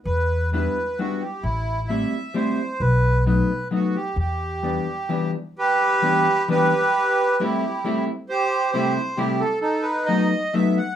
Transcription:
<<
  \new Staff \with { instrumentName = "Accordion" } { \time 3/4 \key e \minor \tempo 4 = 132 << { b'4 b'4 fis'8 g'8 | e'4 e''4 c''4 | b'4 b'4 fis'8 g'8 | g'2~ g'8 r8 |
b'2 b'4~ | b'4 g'4. r8 | c''4 c''4 g'8 a'8 | a'8 b'8 dis''4 e''8 fis''8 | } \\ { r2. | r2. | r2. | r2. |
g'2 g'4~ | g'4 e'4. r8 | g'4. r4. | dis'4. r4. | } >> }
  \new Staff \with { instrumentName = "Hollow-body jazz guitar" } { \time 3/4 \key e \minor r4 <g b d' e'>8 r8 <g b d' e'>8 r8 | r4 <g a c' e'>8 r8 <g a c' e'>8 r8 | r4 <fis a b dis'>8 r8 <fis a b dis'>8 r8 | r4 <e g b d'>8 r8 <e g b d'>8 r8 |
r4 <e g b d'>8 r8 <e g b d'>8 r8 | r4 <g a c' e'>8 r8 <g a c' e'>8 r8 | r4 <c g a c' e'>8 r8 <c g a c' e'>8 r8 | r4 <fis a b dis'>8 r8 <fis a b dis'>8 r8 | }
  \new Staff \with { instrumentName = "Upright bass" } { \clef bass \time 3/4 \key e \minor e,2 r4 | a,,2 r4 | b,,2 r4 | e,2 r4 |
r2. | r2. | r2. | r2. | }
>>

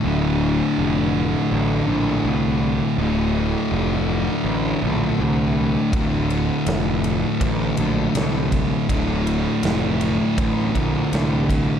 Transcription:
<<
  \new Staff \with { instrumentName = "Distorted electric guitar" } { \clef bass \time 4/4 \key d \minor \tempo 4 = 81 <d, a, d>2~ <d, a, d>8 <d, a, d>8 <d, a, d>4 | <d, a, d>2~ <d, a, d>8 <d, a, d>8 <d, a, d>4 | <d, a, d>2~ <d, a, d>8 <d, a, d>8 <d, a, d>4 | <d, a, d>2~ <d, a, d>8 <d, a, d>8 <d, a, d>4 | }
  \new Staff \with { instrumentName = "Distorted electric guitar" } { \clef bass \time 4/4 \key d \minor <d, a, d>1 | <d, a, d>1 | <d, a, d>1 | <d, a, d>1 | }
  \new Staff \with { instrumentName = "Picked electric bass" } { \clef bass \time 4/4 \key d \minor d,,4 f,,4 a,,8 bes,,8 c,4 | d,,4 f,,4 a,,8 bes,,8 c,4 | d,,4 f,,4 a,,8 bes,,8 c,4 | d,,4 f,,4 a,,8 bes,,8 c,4 | }
  \new DrumStaff \with { instrumentName = "Drums" } \drummode { \time 4/4 r4 r4 r4 r4 | r4 r4 r4 r4 | <bd cymr>8 cymr8 <cymr sn>8 cymr8 <bd cymr>8 cymr8 <cymr sn>8 <bd cymr>8 | <bd cymr>8 cymr8 <cymr sn>8 cymr8 <bd cymr>8 <bd cymr>8 <cymr sn>8 <bd cymr>8 | }
>>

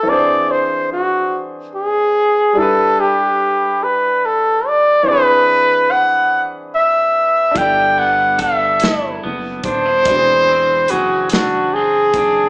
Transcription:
<<
  \new Staff \with { instrumentName = "Flugelhorn" } { \time 6/8 \key e \minor \tempo 4. = 48 d''8 c''8 fis'8 r8 gis'4 | a'8 g'4 b'8 a'8 d''8 | b'4 fis''8 r8 e''4 | g''8 fis''8 e''4 r8 c''8~ |
c''4 fis'8 fis'8 gis'4 | }
  \new Staff \with { instrumentName = "Grand piano" } { \time 6/8 \key e \minor <e c' d' gis' c''>2. | <g d' e' a' b'>2. | <e c' d' gis' b'>2. | <d' e' a' d''>2. |
<c' d' fis' gis' c''>2. | }
  \new Staff \with { instrumentName = "Clean electric guitar" } { \time 6/8 \key e \minor r2. | r2. | r2. | g8 b8 a'8 e'8 b8 d'16 e'16 |
e8 c'8 gis'8 d'8 c'8 d'8 | }
  \new Staff \with { instrumentName = "Analog synth bass" } { \clef bass \time 6/8 \key e \minor r2. | r2. | r2. | g,,2 fis,,8 ees,,8 |
e,,4 fis,,4. fis,,8 | }
  \new DrumStaff \with { instrumentName = "Drums" } \drummode { \time 6/8 r4. r4. | r4. r4. | r4. r4. | <hh bd>4 <hh bd>8 <hh sn>4 <hh bd>8 |
<hh bd>4 hh8 <hh sn>4 <hh bd>8 | }
>>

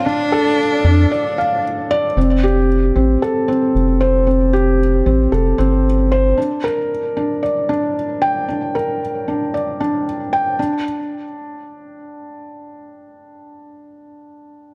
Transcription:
<<
  \new Staff \with { instrumentName = "Felt piano" } { \time 4/4 \key f \major \tempo 4 = 114 d'8 a'8 r8 d'8 d''8 f''8 r8 d''8 | c'8 g'8 r8 c'8 a'8 c'8 r8 c''8 | c'8 g'8 r8 c'8 a'8 c'8 r8 c''8 | d'8 bes'8 r8 d'8 d''8 d'8 r8 g''8 |
d'8 bes'8 r8 d'8 d''8 d'8 r8 g''8 | d'8 r2. r8 | r1 | }
  \new Staff \with { instrumentName = "Cello" } { \time 4/4 \key f \major d'2. r4 | r1 | r1 | r1 |
r1 | r1 | r1 | }
  \new Staff \with { instrumentName = "Analog synth bass" } { \clef bass \time 4/4 \key f \major r4. f,8 r2 | f,,4. a,,8 r4 f,,4~ | f,,4. a,,8 f,,8 g,,4. | r1 |
r1 | r1 | r1 | }
>>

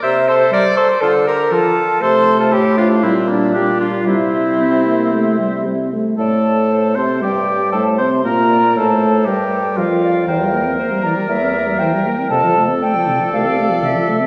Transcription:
<<
  \new Staff \with { instrumentName = "Flute" } { \time 4/4 \key g \dorian \tempo 4 = 118 e'''8 c'''8 d'''8 c'''8 a''8 bes''8 a''4 | c'''8. a''16 g''8 f''8 e''8 d''8 g''8 f''8 | e''2. r4 | a''4. c'''8 g''4 a''8 c'''8 |
bes''4 a''4 g''4 f''4 | g''4. bes''8 e''4 g''4 | a''8 r8 g''4 f''4 e''4 | }
  \new Staff \with { instrumentName = "Clarinet" } { \time 4/4 \key g \dorian e''8 c''8 d''8 c''8 a'8 bes'8 a'4 | c''8. a'16 g'8 f'8 e'8 d'8 g'8 f'8 | e'2. r4 | d''4 c''8 a'8 d''4 c''4 |
bes'8 d''8 c''4 bes'8 a'8 bes'8 d''8 | c''8 bes'8 c''8 d''4. c''8 bes'8 | a'8 r8 d''2. | }
  \new Staff \with { instrumentName = "Oboe" } { \time 4/4 \key g \dorian c''8 a'8 bes'8 a'8 f'8 g'8 f'4 | a'8. f'16 e'8 d'8 c'8 bes8 d'8 d'8 | c'2. r4 | a'4. c''8 g'4 a'8 c''8 |
bes'4 a'4 g'4 f'4 | bes'1 | a'1 | }
  \new Staff \with { instrumentName = "French horn" } { \time 4/4 \key g \dorian r4 g8. r4 r16 f8. r16 | a2 g4 g4 | g4 c'8 bes8 a8 g8 c'8 a8 | a4. c'8 g4 a8 c'8 |
bes4 a4 g4 f4 | e16 g16 bes16 c'16 bes16 g16 e16 g16 bes16 c'16 bes16 g16 e16 g16 bes16 c'16 | c16 f16 a16 c'16 a16 f16 c16 f16 a16 c'16 a16 f16 c16 f16 a16 c'16 | }
  \new Staff \with { instrumentName = "Bassoon" } { \clef bass \time 4/4 \key g \dorian c4 r4 d4 r4 | c4 a,4 bes,2 | c2.~ c8 r8 | a,4. c8 g,4 a,8 c8 |
bes,4 a,4 g,4 f,4 | e,4 r4 e,4 r4 | f,4 r4 c,4 r4 | }
>>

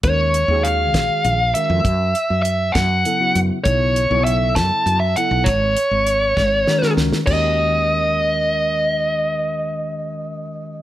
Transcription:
<<
  \new Staff \with { instrumentName = "Lead electric guitar" } { \time 6/8 \key ees \minor \tempo 4. = 66 des''4 f''4. fes''8~ | fes''4 fes''8 ges''4 r8 | cis''4 e''8 a''8. e''16 fis''8 | des''2~ des''8 r8 |
ees''2.~ | ees''2. | }
  \new Staff \with { instrumentName = "Tine electric piano" } { \time 6/8 \key ees \minor <ees aes des' ges' bes'>8 r16 <ees aes des' ges' aes'>4. r16 <ees aes des' ges' bes'>8 | r2 <des ges ces' fes' a'>16 <des ges ces' fes' ges'>8 r16 | <cis fis b e' a'>8 r16 <cis fis b e' a'>4. r16 <cis fis b e' a'>8 | r2 <ees aes des' ges' bes'>16 <ees aes des' ges' bes'>8 r16 |
<ees aes des' ges' bes'>2.~ | <ees aes des' ges' bes'>2. | }
  \new Staff \with { instrumentName = "Fretless electric bass" } { \clef bass \time 6/8 \key ees \minor ees,8. ees,8. bes,,16 r16 bes,,8 r16 f,16 | ges,8 r16 ges,8. ges,8 r8 ges,16 r16 | b,,8. b,,8. fis,16 r16 fis,8 r16 b,,16 | aes,,8 r16 aes,,8. aes,,8 r8 des,16 r16 |
ees,2.~ | ees,2. | }
  \new DrumStaff \with { instrumentName = "Drums" } \drummode { \time 6/8 <hh bd>8 hh8 hh8 <hh bd sn>8 hh8 hh8 | <hh bd>8 hh8 hh8 <hh bd sn>8 hh8 hh8 | <hh bd>8 hh8 hh8 <hh bd sn>8 hh8 hh8 | <hh bd>8 hh8 hh8 <bd sn>8 sn16 sn16 sn16 sn16 |
<cymc bd>4. r4. | r4. r4. | }
>>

